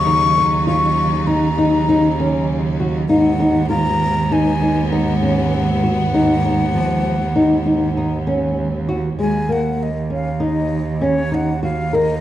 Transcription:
X:1
M:5/4
L:1/8
Q:1/4=98
K:Ebm
V:1 name="Flute"
d'2 d'2 b4 z2 | g2 b2 a2 g4- | g8 z2 | a g e f e2 d g f e |]
V:2 name="Nylon-string guitar"
E E F2 E E E D2 G | E E F2 E E E D2 G | E E F,2 E E E D2 G | A, B,2 D E2 D E G B |]
V:3 name="String section" clef=bass
[D,G,E]8- [D,G,E]2 | [A,,A,C]8- [A,,A,C]2- | [A,,A,C]8- [A,,A,C]2 | z8 z2 |]
V:4 name="Cello" clef=bass
E,,8- E,,2 | E,,8- E,,2- | E,,8- E,,2 | E,,8- E,,2 |]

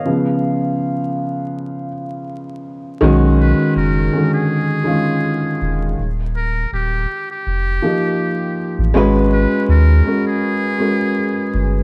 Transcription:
X:1
M:4/4
L:1/16
Q:"Swing 16ths" 1/4=81
K:Blyd
V:1 name="Muted trumpet"
z16 | z2 B2 A3 G8- G | z2 A2 =G3 G8- G | z2 B2 A3 G8- G |]
V:2 name="Upright piano"
e8- e2 z6 | [D,G,CF]6 [=D,^D,G,CF]4 [D,G,CE]6 | z8 z2 [E,A,D=G]6 | [G,CFB]6 [G,CFA]4 [G,CFA]6 |]
V:3 name="Upright piano" clef=bass
[C,E,B,]16 | z16 | z16 | z16 |]
V:4 name="Sub bass" clef=bass
z16 | B,,,3 z F,,,2 z8 =E,,,2 | D,,,4 D,,,2 z2 E,,,2 z4 z =A,,, | G,,,3 z D,,2 z8 =G,,,2 |]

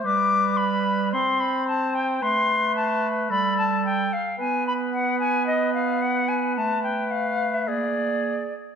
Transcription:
X:1
M:4/4
L:1/16
Q:1/4=110
K:Gmix
V:1 name="Flute"
d'4 b4 c'2 b2 a2 g2 | c'4 a4 b2 a2 g2 f2 | _a2 b2 ^f2 a2 _e2 =f2 ^f2 a2 | a2 g2 f3 e d6 z2 |]
V:2 name="Oboe"
B8 c8 | B8 A6 z2 | B16- | B8 _A6 z2 |]
V:3 name="Clarinet"
G,8 C8 | A,8 G,6 z2 | B,16 | A,8 _B,6 z2 |]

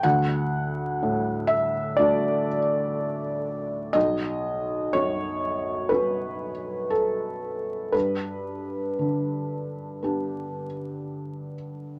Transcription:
X:1
M:4/4
L:1/8
Q:1/4=61
K:Glyd
V:1 name="Felt piano"
f3 e d z3 | ^d2 c2 B2 A2 | B6- B z |]
V:2 name="Felt piano"
D,,2 A,,2 [A,DF]4 | B,,,2 F,,2 [B,CF]4 | G,,2 D,2 [B,DG]4 |]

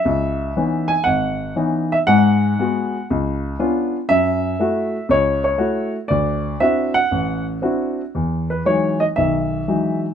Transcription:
X:1
M:4/4
L:1/8
Q:"Swing" 1/4=118
K:E
V:1 name="Grand piano"
e3 g f2 z e | f4 z4 | e4 c c2 z | =d2 e f2 z3 |
z B c d e3 z |]
V:2 name="Grand piano"
C,,2 [E,B,CD] z G,,,2 [E,B,CD] z | [G,,G,]2 [G,B,F] z C,,2 [B,C=D^E] z | F,,2 [A,EF] z C,,2 [A,EF] z | =D,,2 [=C=DEF] z A,,,2 [CDEF] z |
E,,2 [E,F,G,D] z [B,,,D,]2 [E,F,G,D] z |]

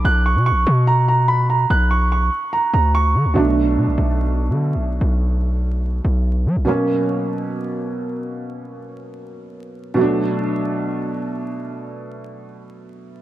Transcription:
X:1
M:4/4
L:1/16
Q:1/4=145
K:Bm
V:1 name="Grand piano"
f'2 c'2 c'4 ^a2 a2 b2 a2 | f'2 c'2 c'4 ^a2 a2 c'4 | z16 | z16 |
z16 | z16 | z16 | z16 |]
V:2 name="Felt piano" clef=bass
z16 | z16 | [B,,F,A,D]16- | [B,,F,A,D]16 |
[B,,F,^A,C]16- | [B,,F,^A,C]16 | [B,,F,A,D]16- | [B,,F,A,D]16 |]
V:3 name="808-style bass" clef=bass
B,,,3 B,,3/2 B,,,3/2 B,,8- B,,2 | B,,,6 z4 D,,4 D, D,, | B,,,4 B,, B,,, B,,,4- B,,, D,2- D,/2 B,,,2- B,,,/2 | B,,,8- B,,,2 B,,,4 F, B,,, |
z16 | z16 | z16 | z16 |]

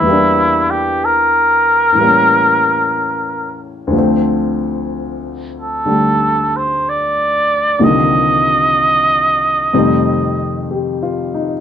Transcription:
X:1
M:4/4
L:1/8
Q:"Swing" 1/4=62
K:Dphr
V:1 name="Muted trumpet"
=E G B4- B z | z3 A2 c d2 | e6 z2 |]
V:2 name="Grand piano"
z8 | z8 | z6 (3G F E |]
V:3 name="Grand piano" clef=bass
[=E,,=E,G,B,D]4 [A,,E,G,B,^C]4 | [D,,D,F,A,C]4 [D,G,A,]4 | [C,,C,D,E,F,B,]4 [F,,C,E,G,A,C]4 |]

